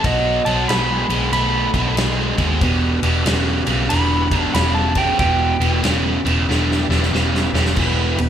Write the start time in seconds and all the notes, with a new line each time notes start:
0.03 B1 B2 F#3 E4 G4 A#4 C#5 D#5, kick, ride
0.24 D#4 F#4 A4 C5
0.45 B1 B2 F#3 A5, ride
0.68 B1 B2 G#3 B5, snare, ride
1.10 B1 B2 G#3, ride
1.32 B1 B2 A3 B5, ride
1.74 B1 B2 A3, kick, ride
1.97 B1 B2 G#3, snare, ride
2.37 D#2 B2 G#3, kick, ride
2.61 E1 E2 B2 D4 F#4 G4 B4, kick, ride
3.03 E1 E2 B2, ride
3.26 E1 E2 C#3, snare, ride
3.67 B1 E2 C#3, ride
3.89 E1 E2 D3 B5, ride
4.31 E2 D3, kick, ride
4.39 A5
4.54 E1 E2 C#3 B5, snare, ride
4.75 A5
4.95 E2 C#3 G5, kick, ride
5.19 E1 E2 B2 E4 G4 B4 D5 G5, kick, ride
5.60 E1 E2 B2, ride
5.83 E1 E2 C#3, snare, ride
6.25 E1 E2 C#3, ride
6.49 E1 E2 D3, snare
6.72 snare
6.89 E1 E2 D3, snare
7.03 snare
7.13 E1 E2 C#3, snare
7.36 snare
7.54 E1 E2 C#3, snare
7.66 snare
7.76 E1 E2 B2 E3 B3 E4 G4 B4, kick, crash
8.18 E1 E2 B2, ride